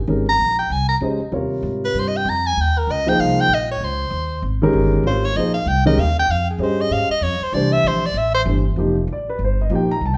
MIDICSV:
0, 0, Header, 1, 5, 480
1, 0, Start_track
1, 0, Key_signature, -4, "major"
1, 0, Tempo, 310078
1, 130, Time_signature, 4, 2, 24, 8
1, 15751, End_track
2, 0, Start_track
2, 0, Title_t, "Soprano saxophone"
2, 0, Program_c, 0, 64
2, 451, Note_on_c, 0, 82, 103
2, 884, Note_off_c, 0, 82, 0
2, 907, Note_on_c, 0, 79, 82
2, 1114, Note_on_c, 0, 80, 86
2, 1137, Note_off_c, 0, 79, 0
2, 1363, Note_off_c, 0, 80, 0
2, 1372, Note_on_c, 0, 82, 87
2, 1487, Note_off_c, 0, 82, 0
2, 2859, Note_on_c, 0, 71, 83
2, 3081, Note_on_c, 0, 72, 81
2, 3104, Note_off_c, 0, 71, 0
2, 3224, Note_on_c, 0, 75, 81
2, 3247, Note_off_c, 0, 72, 0
2, 3354, Note_on_c, 0, 79, 84
2, 3378, Note_off_c, 0, 75, 0
2, 3549, Note_on_c, 0, 82, 91
2, 3572, Note_off_c, 0, 79, 0
2, 3819, Note_on_c, 0, 80, 88
2, 3842, Note_off_c, 0, 82, 0
2, 4036, Note_on_c, 0, 79, 83
2, 4059, Note_off_c, 0, 80, 0
2, 4304, Note_on_c, 0, 70, 72
2, 4327, Note_off_c, 0, 79, 0
2, 4505, Note_on_c, 0, 75, 85
2, 4528, Note_off_c, 0, 70, 0
2, 4779, Note_on_c, 0, 79, 95
2, 4803, Note_off_c, 0, 75, 0
2, 4961, Note_on_c, 0, 77, 89
2, 4985, Note_off_c, 0, 79, 0
2, 5270, Note_on_c, 0, 79, 107
2, 5293, Note_off_c, 0, 77, 0
2, 5480, Note_on_c, 0, 75, 84
2, 5503, Note_off_c, 0, 79, 0
2, 5737, Note_off_c, 0, 75, 0
2, 5749, Note_on_c, 0, 73, 84
2, 5941, Note_on_c, 0, 72, 75
2, 5965, Note_off_c, 0, 73, 0
2, 6876, Note_off_c, 0, 72, 0
2, 7848, Note_on_c, 0, 72, 79
2, 8120, Note_on_c, 0, 73, 90
2, 8143, Note_off_c, 0, 72, 0
2, 8307, Note_on_c, 0, 75, 78
2, 8330, Note_off_c, 0, 73, 0
2, 8561, Note_off_c, 0, 75, 0
2, 8570, Note_on_c, 0, 77, 86
2, 8791, Note_on_c, 0, 79, 97
2, 8814, Note_off_c, 0, 77, 0
2, 9073, Note_off_c, 0, 79, 0
2, 9081, Note_on_c, 0, 75, 94
2, 9282, Note_on_c, 0, 77, 86
2, 9306, Note_off_c, 0, 75, 0
2, 9559, Note_off_c, 0, 77, 0
2, 9588, Note_on_c, 0, 79, 107
2, 9767, Note_on_c, 0, 77, 88
2, 9790, Note_off_c, 0, 79, 0
2, 10041, Note_off_c, 0, 77, 0
2, 10067, Note_on_c, 0, 68, 54
2, 10260, Note_on_c, 0, 72, 79
2, 10283, Note_off_c, 0, 68, 0
2, 10545, Note_on_c, 0, 75, 92
2, 10568, Note_off_c, 0, 72, 0
2, 10718, Note_on_c, 0, 77, 96
2, 10741, Note_off_c, 0, 75, 0
2, 10996, Note_off_c, 0, 77, 0
2, 11011, Note_on_c, 0, 75, 89
2, 11194, Note_on_c, 0, 73, 84
2, 11217, Note_off_c, 0, 75, 0
2, 11499, Note_on_c, 0, 72, 84
2, 11522, Note_off_c, 0, 73, 0
2, 11677, Note_on_c, 0, 74, 92
2, 11700, Note_off_c, 0, 72, 0
2, 11954, Note_on_c, 0, 76, 111
2, 11977, Note_off_c, 0, 74, 0
2, 12191, Note_on_c, 0, 72, 94
2, 12214, Note_off_c, 0, 76, 0
2, 12482, Note_on_c, 0, 74, 89
2, 12506, Note_off_c, 0, 72, 0
2, 12654, Note_on_c, 0, 76, 97
2, 12677, Note_off_c, 0, 74, 0
2, 12911, Note_off_c, 0, 76, 0
2, 12921, Note_on_c, 0, 72, 102
2, 13028, Note_off_c, 0, 72, 0
2, 15751, End_track
3, 0, Start_track
3, 0, Title_t, "Grand piano"
3, 0, Program_c, 1, 0
3, 118, Note_on_c, 1, 56, 51
3, 121, Note_on_c, 1, 51, 51
3, 133, Note_on_c, 1, 61, 51
3, 139, Note_on_c, 1, 67, 46
3, 150, Note_on_c, 1, 70, 59
3, 387, Note_off_c, 1, 56, 0
3, 389, Note_off_c, 1, 51, 0
3, 394, Note_off_c, 1, 61, 0
3, 397, Note_off_c, 1, 67, 0
3, 403, Note_off_c, 1, 70, 0
3, 1568, Note_on_c, 1, 56, 53
3, 1575, Note_on_c, 1, 61, 52
3, 1585, Note_on_c, 1, 67, 46
3, 1593, Note_on_c, 1, 72, 53
3, 1596, Note_on_c, 1, 75, 58
3, 1832, Note_off_c, 1, 56, 0
3, 1835, Note_off_c, 1, 61, 0
3, 1841, Note_off_c, 1, 67, 0
3, 1844, Note_off_c, 1, 72, 0
3, 1846, Note_off_c, 1, 75, 0
3, 2036, Note_on_c, 1, 55, 57
3, 2045, Note_on_c, 1, 48, 55
3, 2046, Note_on_c, 1, 65, 50
3, 2060, Note_on_c, 1, 70, 57
3, 2066, Note_on_c, 1, 73, 59
3, 3370, Note_off_c, 1, 55, 0
3, 3374, Note_off_c, 1, 48, 0
3, 3375, Note_off_c, 1, 65, 0
3, 3382, Note_off_c, 1, 70, 0
3, 3385, Note_off_c, 1, 73, 0
3, 4742, Note_on_c, 1, 53, 66
3, 4745, Note_on_c, 1, 58, 62
3, 4748, Note_on_c, 1, 63, 64
3, 4759, Note_on_c, 1, 68, 63
3, 4772, Note_on_c, 1, 72, 70
3, 5372, Note_off_c, 1, 53, 0
3, 5373, Note_off_c, 1, 58, 0
3, 5375, Note_off_c, 1, 63, 0
3, 5381, Note_off_c, 1, 68, 0
3, 5387, Note_off_c, 1, 72, 0
3, 7149, Note_on_c, 1, 51, 80
3, 7159, Note_on_c, 1, 56, 73
3, 7171, Note_on_c, 1, 61, 72
3, 7172, Note_on_c, 1, 67, 72
3, 7173, Note_on_c, 1, 70, 89
3, 7776, Note_off_c, 1, 51, 0
3, 7781, Note_off_c, 1, 56, 0
3, 7787, Note_off_c, 1, 61, 0
3, 7787, Note_off_c, 1, 67, 0
3, 7788, Note_off_c, 1, 70, 0
3, 7821, Note_on_c, 1, 55, 60
3, 7829, Note_on_c, 1, 60, 56
3, 7833, Note_on_c, 1, 65, 58
3, 7836, Note_on_c, 1, 70, 53
3, 7847, Note_on_c, 1, 73, 71
3, 8079, Note_off_c, 1, 55, 0
3, 8083, Note_off_c, 1, 60, 0
3, 8084, Note_off_c, 1, 65, 0
3, 8086, Note_off_c, 1, 70, 0
3, 8092, Note_off_c, 1, 73, 0
3, 8312, Note_on_c, 1, 53, 55
3, 8313, Note_on_c, 1, 58, 51
3, 8316, Note_on_c, 1, 63, 54
3, 8324, Note_on_c, 1, 68, 50
3, 8333, Note_on_c, 1, 72, 64
3, 8564, Note_off_c, 1, 53, 0
3, 8564, Note_off_c, 1, 58, 0
3, 8566, Note_off_c, 1, 63, 0
3, 8570, Note_off_c, 1, 68, 0
3, 8575, Note_off_c, 1, 72, 0
3, 9062, Note_on_c, 1, 51, 84
3, 9072, Note_on_c, 1, 61, 73
3, 9073, Note_on_c, 1, 56, 72
3, 9076, Note_on_c, 1, 67, 70
3, 9089, Note_on_c, 1, 70, 85
3, 9231, Note_off_c, 1, 51, 0
3, 9236, Note_off_c, 1, 61, 0
3, 9237, Note_off_c, 1, 56, 0
3, 9238, Note_off_c, 1, 67, 0
3, 9245, Note_off_c, 1, 70, 0
3, 10207, Note_on_c, 1, 68, 64
3, 10214, Note_on_c, 1, 67, 55
3, 10215, Note_on_c, 1, 61, 59
3, 10221, Note_on_c, 1, 72, 55
3, 10231, Note_on_c, 1, 75, 67
3, 10923, Note_off_c, 1, 68, 0
3, 10926, Note_off_c, 1, 61, 0
3, 10926, Note_off_c, 1, 67, 0
3, 10929, Note_off_c, 1, 72, 0
3, 10934, Note_off_c, 1, 75, 0
3, 11661, Note_on_c, 1, 52, 55
3, 11667, Note_on_c, 1, 57, 49
3, 11677, Note_on_c, 1, 62, 49
3, 11679, Note_on_c, 1, 67, 51
3, 11690, Note_on_c, 1, 72, 61
3, 12369, Note_off_c, 1, 52, 0
3, 12372, Note_off_c, 1, 57, 0
3, 12377, Note_off_c, 1, 62, 0
3, 12378, Note_off_c, 1, 67, 0
3, 12384, Note_off_c, 1, 72, 0
3, 13085, Note_on_c, 1, 52, 48
3, 13095, Note_on_c, 1, 57, 43
3, 13102, Note_on_c, 1, 67, 44
3, 13106, Note_on_c, 1, 62, 41
3, 13111, Note_on_c, 1, 72, 53
3, 13350, Note_off_c, 1, 52, 0
3, 13356, Note_off_c, 1, 57, 0
3, 13359, Note_off_c, 1, 67, 0
3, 13361, Note_off_c, 1, 62, 0
3, 13364, Note_off_c, 1, 72, 0
3, 13579, Note_on_c, 1, 53, 59
3, 13591, Note_on_c, 1, 58, 52
3, 13600, Note_on_c, 1, 63, 50
3, 13603, Note_on_c, 1, 67, 66
3, 13838, Note_off_c, 1, 53, 0
3, 13844, Note_off_c, 1, 58, 0
3, 13848, Note_off_c, 1, 63, 0
3, 13850, Note_off_c, 1, 67, 0
3, 14127, Note_on_c, 1, 74, 69
3, 14373, Note_off_c, 1, 74, 0
3, 14388, Note_on_c, 1, 71, 80
3, 14548, Note_off_c, 1, 71, 0
3, 14618, Note_on_c, 1, 72, 74
3, 14859, Note_off_c, 1, 72, 0
3, 14882, Note_on_c, 1, 75, 69
3, 15025, Note_on_c, 1, 53, 58
3, 15035, Note_off_c, 1, 75, 0
3, 15038, Note_on_c, 1, 58, 51
3, 15042, Note_on_c, 1, 63, 56
3, 15052, Note_on_c, 1, 67, 64
3, 15094, Note_on_c, 1, 79, 76
3, 15281, Note_off_c, 1, 53, 0
3, 15287, Note_off_c, 1, 58, 0
3, 15290, Note_off_c, 1, 63, 0
3, 15294, Note_off_c, 1, 67, 0
3, 15337, Note_off_c, 1, 79, 0
3, 15347, Note_on_c, 1, 82, 96
3, 15508, Note_off_c, 1, 82, 0
3, 15565, Note_on_c, 1, 81, 77
3, 15684, Note_off_c, 1, 81, 0
3, 15694, Note_on_c, 1, 79, 77
3, 15751, Note_off_c, 1, 79, 0
3, 15751, End_track
4, 0, Start_track
4, 0, Title_t, "Upright bass"
4, 0, Program_c, 2, 32
4, 114, Note_on_c, 2, 32, 83
4, 587, Note_off_c, 2, 32, 0
4, 595, Note_on_c, 2, 34, 77
4, 1068, Note_off_c, 2, 34, 0
4, 1081, Note_on_c, 2, 36, 79
4, 1545, Note_off_c, 2, 36, 0
4, 1554, Note_on_c, 2, 37, 81
4, 1833, Note_off_c, 2, 37, 0
4, 2041, Note_on_c, 2, 39, 76
4, 2511, Note_off_c, 2, 39, 0
4, 2518, Note_on_c, 2, 44, 83
4, 2989, Note_off_c, 2, 44, 0
4, 3006, Note_on_c, 2, 43, 83
4, 3473, Note_off_c, 2, 43, 0
4, 3484, Note_on_c, 2, 41, 90
4, 3952, Note_off_c, 2, 41, 0
4, 3974, Note_on_c, 2, 39, 80
4, 4438, Note_off_c, 2, 39, 0
4, 4445, Note_on_c, 2, 37, 79
4, 4913, Note_off_c, 2, 37, 0
4, 4933, Note_on_c, 2, 36, 78
4, 5390, Note_off_c, 2, 36, 0
4, 5399, Note_on_c, 2, 34, 82
4, 5870, Note_off_c, 2, 34, 0
4, 5890, Note_on_c, 2, 37, 81
4, 6343, Note_off_c, 2, 37, 0
4, 6352, Note_on_c, 2, 39, 80
4, 6826, Note_off_c, 2, 39, 0
4, 6847, Note_on_c, 2, 32, 83
4, 7314, Note_off_c, 2, 32, 0
4, 7323, Note_on_c, 2, 31, 88
4, 7783, Note_off_c, 2, 31, 0
4, 7792, Note_on_c, 2, 32, 80
4, 8266, Note_off_c, 2, 32, 0
4, 8289, Note_on_c, 2, 34, 80
4, 8746, Note_off_c, 2, 34, 0
4, 8756, Note_on_c, 2, 36, 79
4, 9228, Note_off_c, 2, 36, 0
4, 9240, Note_on_c, 2, 39, 97
4, 9710, Note_off_c, 2, 39, 0
4, 9727, Note_on_c, 2, 41, 82
4, 10183, Note_off_c, 2, 41, 0
4, 10192, Note_on_c, 2, 43, 84
4, 10666, Note_off_c, 2, 43, 0
4, 10692, Note_on_c, 2, 44, 79
4, 10963, Note_off_c, 2, 44, 0
4, 11157, Note_on_c, 2, 41, 91
4, 11435, Note_off_c, 2, 41, 0
4, 11647, Note_on_c, 2, 36, 89
4, 12114, Note_off_c, 2, 36, 0
4, 12125, Note_on_c, 2, 34, 81
4, 12593, Note_off_c, 2, 34, 0
4, 12603, Note_on_c, 2, 33, 87
4, 13072, Note_off_c, 2, 33, 0
4, 13089, Note_on_c, 2, 31, 92
4, 13550, Note_off_c, 2, 31, 0
4, 13560, Note_on_c, 2, 29, 77
4, 14030, Note_off_c, 2, 29, 0
4, 14046, Note_on_c, 2, 33, 79
4, 14514, Note_off_c, 2, 33, 0
4, 14532, Note_on_c, 2, 31, 77
4, 14997, Note_off_c, 2, 31, 0
4, 15011, Note_on_c, 2, 34, 87
4, 15477, Note_off_c, 2, 34, 0
4, 15497, Note_on_c, 2, 36, 82
4, 15751, Note_off_c, 2, 36, 0
4, 15751, End_track
5, 0, Start_track
5, 0, Title_t, "Muted upright bass strokes"
5, 1859, Note_on_c, 9, 29, 40
5, 2014, Note_off_c, 9, 29, 0
5, 10986, Note_on_c, 9, 29, 41
5, 11141, Note_off_c, 9, 29, 0
5, 11462, Note_on_c, 9, 29, 41
5, 11617, Note_off_c, 9, 29, 0
5, 15751, End_track
0, 0, End_of_file